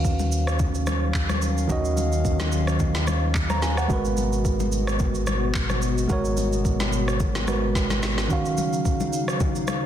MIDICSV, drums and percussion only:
0, 0, Header, 1, 2, 480
1, 0, Start_track
1, 0, Key_signature, -6, "minor"
1, 0, Tempo, 550459
1, 1478, Time_signature, 4, 2, 24, 8
1, 8597, End_track
2, 0, Start_track
2, 0, Title_t, "Drums"
2, 40, Note_on_c, 9, 36, 87
2, 40, Note_on_c, 9, 82, 73
2, 127, Note_off_c, 9, 36, 0
2, 128, Note_off_c, 9, 82, 0
2, 170, Note_on_c, 9, 63, 74
2, 170, Note_on_c, 9, 82, 50
2, 257, Note_off_c, 9, 63, 0
2, 257, Note_off_c, 9, 82, 0
2, 279, Note_on_c, 9, 82, 87
2, 366, Note_off_c, 9, 82, 0
2, 412, Note_on_c, 9, 37, 89
2, 418, Note_on_c, 9, 82, 54
2, 499, Note_off_c, 9, 37, 0
2, 505, Note_off_c, 9, 82, 0
2, 516, Note_on_c, 9, 82, 71
2, 517, Note_on_c, 9, 64, 68
2, 520, Note_on_c, 9, 36, 120
2, 603, Note_off_c, 9, 82, 0
2, 605, Note_off_c, 9, 64, 0
2, 608, Note_off_c, 9, 36, 0
2, 650, Note_on_c, 9, 82, 55
2, 738, Note_off_c, 9, 82, 0
2, 756, Note_on_c, 9, 82, 86
2, 759, Note_on_c, 9, 37, 89
2, 761, Note_on_c, 9, 63, 75
2, 843, Note_off_c, 9, 82, 0
2, 846, Note_off_c, 9, 37, 0
2, 848, Note_off_c, 9, 63, 0
2, 996, Note_on_c, 9, 39, 82
2, 999, Note_on_c, 9, 36, 93
2, 1004, Note_on_c, 9, 82, 83
2, 1083, Note_off_c, 9, 39, 0
2, 1086, Note_off_c, 9, 36, 0
2, 1091, Note_off_c, 9, 82, 0
2, 1129, Note_on_c, 9, 37, 89
2, 1129, Note_on_c, 9, 82, 54
2, 1130, Note_on_c, 9, 63, 75
2, 1216, Note_off_c, 9, 37, 0
2, 1216, Note_off_c, 9, 82, 0
2, 1217, Note_off_c, 9, 63, 0
2, 1237, Note_on_c, 9, 82, 93
2, 1324, Note_off_c, 9, 82, 0
2, 1375, Note_on_c, 9, 82, 60
2, 1463, Note_off_c, 9, 82, 0
2, 1478, Note_on_c, 9, 82, 72
2, 1479, Note_on_c, 9, 36, 118
2, 1480, Note_on_c, 9, 64, 65
2, 1565, Note_off_c, 9, 82, 0
2, 1566, Note_off_c, 9, 36, 0
2, 1567, Note_off_c, 9, 64, 0
2, 1611, Note_on_c, 9, 82, 60
2, 1699, Note_off_c, 9, 82, 0
2, 1719, Note_on_c, 9, 82, 97
2, 1720, Note_on_c, 9, 63, 69
2, 1807, Note_off_c, 9, 63, 0
2, 1807, Note_off_c, 9, 82, 0
2, 1851, Note_on_c, 9, 82, 56
2, 1938, Note_off_c, 9, 82, 0
2, 1960, Note_on_c, 9, 36, 83
2, 1962, Note_on_c, 9, 82, 72
2, 2048, Note_off_c, 9, 36, 0
2, 2050, Note_off_c, 9, 82, 0
2, 2089, Note_on_c, 9, 82, 53
2, 2090, Note_on_c, 9, 38, 68
2, 2093, Note_on_c, 9, 63, 76
2, 2177, Note_off_c, 9, 38, 0
2, 2177, Note_off_c, 9, 82, 0
2, 2180, Note_off_c, 9, 63, 0
2, 2199, Note_on_c, 9, 82, 92
2, 2286, Note_off_c, 9, 82, 0
2, 2331, Note_on_c, 9, 37, 86
2, 2337, Note_on_c, 9, 82, 56
2, 2419, Note_off_c, 9, 37, 0
2, 2424, Note_off_c, 9, 82, 0
2, 2437, Note_on_c, 9, 82, 68
2, 2440, Note_on_c, 9, 36, 122
2, 2441, Note_on_c, 9, 64, 67
2, 2525, Note_off_c, 9, 82, 0
2, 2528, Note_off_c, 9, 36, 0
2, 2529, Note_off_c, 9, 64, 0
2, 2571, Note_on_c, 9, 38, 66
2, 2573, Note_on_c, 9, 82, 57
2, 2658, Note_off_c, 9, 38, 0
2, 2660, Note_off_c, 9, 82, 0
2, 2678, Note_on_c, 9, 82, 87
2, 2681, Note_on_c, 9, 37, 88
2, 2685, Note_on_c, 9, 63, 77
2, 2765, Note_off_c, 9, 82, 0
2, 2768, Note_off_c, 9, 37, 0
2, 2772, Note_off_c, 9, 63, 0
2, 2919, Note_on_c, 9, 36, 92
2, 2919, Note_on_c, 9, 39, 84
2, 2927, Note_on_c, 9, 82, 82
2, 3006, Note_off_c, 9, 39, 0
2, 3007, Note_off_c, 9, 36, 0
2, 3015, Note_off_c, 9, 82, 0
2, 3051, Note_on_c, 9, 37, 90
2, 3051, Note_on_c, 9, 82, 56
2, 3052, Note_on_c, 9, 63, 77
2, 3138, Note_off_c, 9, 37, 0
2, 3138, Note_off_c, 9, 82, 0
2, 3139, Note_off_c, 9, 63, 0
2, 3160, Note_on_c, 9, 38, 65
2, 3160, Note_on_c, 9, 82, 89
2, 3247, Note_off_c, 9, 38, 0
2, 3247, Note_off_c, 9, 82, 0
2, 3291, Note_on_c, 9, 37, 97
2, 3296, Note_on_c, 9, 82, 59
2, 3378, Note_off_c, 9, 37, 0
2, 3383, Note_off_c, 9, 82, 0
2, 3398, Note_on_c, 9, 36, 118
2, 3399, Note_on_c, 9, 82, 67
2, 3401, Note_on_c, 9, 64, 63
2, 3486, Note_off_c, 9, 36, 0
2, 3486, Note_off_c, 9, 82, 0
2, 3489, Note_off_c, 9, 64, 0
2, 3531, Note_on_c, 9, 82, 60
2, 3619, Note_off_c, 9, 82, 0
2, 3636, Note_on_c, 9, 82, 99
2, 3642, Note_on_c, 9, 63, 71
2, 3724, Note_off_c, 9, 82, 0
2, 3729, Note_off_c, 9, 63, 0
2, 3773, Note_on_c, 9, 82, 57
2, 3860, Note_off_c, 9, 82, 0
2, 3879, Note_on_c, 9, 36, 89
2, 3881, Note_on_c, 9, 82, 76
2, 3967, Note_off_c, 9, 36, 0
2, 3968, Note_off_c, 9, 82, 0
2, 4010, Note_on_c, 9, 82, 50
2, 4012, Note_on_c, 9, 63, 74
2, 4097, Note_off_c, 9, 82, 0
2, 4100, Note_off_c, 9, 63, 0
2, 4117, Note_on_c, 9, 82, 90
2, 4204, Note_off_c, 9, 82, 0
2, 4250, Note_on_c, 9, 37, 82
2, 4256, Note_on_c, 9, 82, 55
2, 4337, Note_off_c, 9, 37, 0
2, 4343, Note_off_c, 9, 82, 0
2, 4355, Note_on_c, 9, 82, 70
2, 4359, Note_on_c, 9, 36, 122
2, 4361, Note_on_c, 9, 64, 70
2, 4442, Note_off_c, 9, 82, 0
2, 4446, Note_off_c, 9, 36, 0
2, 4448, Note_off_c, 9, 64, 0
2, 4489, Note_on_c, 9, 82, 58
2, 4576, Note_off_c, 9, 82, 0
2, 4594, Note_on_c, 9, 82, 89
2, 4596, Note_on_c, 9, 37, 87
2, 4603, Note_on_c, 9, 63, 72
2, 4681, Note_off_c, 9, 82, 0
2, 4684, Note_off_c, 9, 37, 0
2, 4690, Note_off_c, 9, 63, 0
2, 4835, Note_on_c, 9, 39, 82
2, 4837, Note_on_c, 9, 36, 94
2, 4843, Note_on_c, 9, 82, 84
2, 4922, Note_off_c, 9, 39, 0
2, 4925, Note_off_c, 9, 36, 0
2, 4930, Note_off_c, 9, 82, 0
2, 4967, Note_on_c, 9, 37, 90
2, 4967, Note_on_c, 9, 82, 57
2, 4972, Note_on_c, 9, 63, 78
2, 5054, Note_off_c, 9, 37, 0
2, 5055, Note_off_c, 9, 82, 0
2, 5060, Note_off_c, 9, 63, 0
2, 5075, Note_on_c, 9, 82, 92
2, 5162, Note_off_c, 9, 82, 0
2, 5213, Note_on_c, 9, 82, 63
2, 5300, Note_off_c, 9, 82, 0
2, 5315, Note_on_c, 9, 82, 69
2, 5317, Note_on_c, 9, 36, 114
2, 5319, Note_on_c, 9, 64, 65
2, 5402, Note_off_c, 9, 82, 0
2, 5404, Note_off_c, 9, 36, 0
2, 5406, Note_off_c, 9, 64, 0
2, 5448, Note_on_c, 9, 82, 60
2, 5535, Note_off_c, 9, 82, 0
2, 5554, Note_on_c, 9, 82, 102
2, 5560, Note_on_c, 9, 63, 71
2, 5642, Note_off_c, 9, 82, 0
2, 5647, Note_off_c, 9, 63, 0
2, 5690, Note_on_c, 9, 82, 57
2, 5778, Note_off_c, 9, 82, 0
2, 5799, Note_on_c, 9, 36, 90
2, 5801, Note_on_c, 9, 82, 75
2, 5886, Note_off_c, 9, 36, 0
2, 5888, Note_off_c, 9, 82, 0
2, 5930, Note_on_c, 9, 38, 66
2, 5930, Note_on_c, 9, 63, 74
2, 5930, Note_on_c, 9, 82, 52
2, 6017, Note_off_c, 9, 63, 0
2, 6017, Note_off_c, 9, 82, 0
2, 6018, Note_off_c, 9, 38, 0
2, 6039, Note_on_c, 9, 82, 89
2, 6126, Note_off_c, 9, 82, 0
2, 6173, Note_on_c, 9, 37, 82
2, 6179, Note_on_c, 9, 82, 55
2, 6260, Note_off_c, 9, 37, 0
2, 6266, Note_off_c, 9, 82, 0
2, 6279, Note_on_c, 9, 64, 70
2, 6279, Note_on_c, 9, 82, 70
2, 6281, Note_on_c, 9, 36, 121
2, 6366, Note_off_c, 9, 64, 0
2, 6366, Note_off_c, 9, 82, 0
2, 6368, Note_off_c, 9, 36, 0
2, 6409, Note_on_c, 9, 63, 51
2, 6411, Note_on_c, 9, 38, 68
2, 6413, Note_on_c, 9, 82, 58
2, 6497, Note_off_c, 9, 63, 0
2, 6498, Note_off_c, 9, 38, 0
2, 6500, Note_off_c, 9, 82, 0
2, 6519, Note_on_c, 9, 82, 89
2, 6521, Note_on_c, 9, 37, 90
2, 6521, Note_on_c, 9, 63, 75
2, 6606, Note_off_c, 9, 82, 0
2, 6608, Note_off_c, 9, 37, 0
2, 6608, Note_off_c, 9, 63, 0
2, 6759, Note_on_c, 9, 36, 97
2, 6761, Note_on_c, 9, 38, 58
2, 6768, Note_on_c, 9, 82, 79
2, 6847, Note_off_c, 9, 36, 0
2, 6848, Note_off_c, 9, 38, 0
2, 6855, Note_off_c, 9, 82, 0
2, 6892, Note_on_c, 9, 38, 58
2, 6892, Note_on_c, 9, 63, 77
2, 6892, Note_on_c, 9, 82, 56
2, 6979, Note_off_c, 9, 63, 0
2, 6979, Note_off_c, 9, 82, 0
2, 6980, Note_off_c, 9, 38, 0
2, 7001, Note_on_c, 9, 38, 89
2, 7001, Note_on_c, 9, 82, 89
2, 7089, Note_off_c, 9, 38, 0
2, 7089, Note_off_c, 9, 82, 0
2, 7132, Note_on_c, 9, 38, 84
2, 7137, Note_on_c, 9, 82, 62
2, 7219, Note_off_c, 9, 38, 0
2, 7224, Note_off_c, 9, 82, 0
2, 7240, Note_on_c, 9, 36, 116
2, 7240, Note_on_c, 9, 64, 62
2, 7240, Note_on_c, 9, 82, 72
2, 7327, Note_off_c, 9, 36, 0
2, 7327, Note_off_c, 9, 82, 0
2, 7328, Note_off_c, 9, 64, 0
2, 7372, Note_on_c, 9, 82, 60
2, 7459, Note_off_c, 9, 82, 0
2, 7478, Note_on_c, 9, 82, 100
2, 7480, Note_on_c, 9, 63, 73
2, 7565, Note_off_c, 9, 82, 0
2, 7567, Note_off_c, 9, 63, 0
2, 7612, Note_on_c, 9, 82, 55
2, 7699, Note_off_c, 9, 82, 0
2, 7720, Note_on_c, 9, 36, 86
2, 7721, Note_on_c, 9, 82, 74
2, 7807, Note_off_c, 9, 36, 0
2, 7808, Note_off_c, 9, 82, 0
2, 7851, Note_on_c, 9, 82, 51
2, 7852, Note_on_c, 9, 63, 74
2, 7938, Note_off_c, 9, 82, 0
2, 7939, Note_off_c, 9, 63, 0
2, 7960, Note_on_c, 9, 82, 92
2, 8048, Note_off_c, 9, 82, 0
2, 8092, Note_on_c, 9, 37, 85
2, 8098, Note_on_c, 9, 82, 56
2, 8180, Note_off_c, 9, 37, 0
2, 8185, Note_off_c, 9, 82, 0
2, 8198, Note_on_c, 9, 82, 68
2, 8200, Note_on_c, 9, 64, 70
2, 8201, Note_on_c, 9, 36, 123
2, 8285, Note_off_c, 9, 82, 0
2, 8287, Note_off_c, 9, 64, 0
2, 8288, Note_off_c, 9, 36, 0
2, 8332, Note_on_c, 9, 82, 57
2, 8420, Note_off_c, 9, 82, 0
2, 8437, Note_on_c, 9, 82, 91
2, 8439, Note_on_c, 9, 37, 92
2, 8442, Note_on_c, 9, 63, 76
2, 8524, Note_off_c, 9, 82, 0
2, 8527, Note_off_c, 9, 37, 0
2, 8529, Note_off_c, 9, 63, 0
2, 8597, End_track
0, 0, End_of_file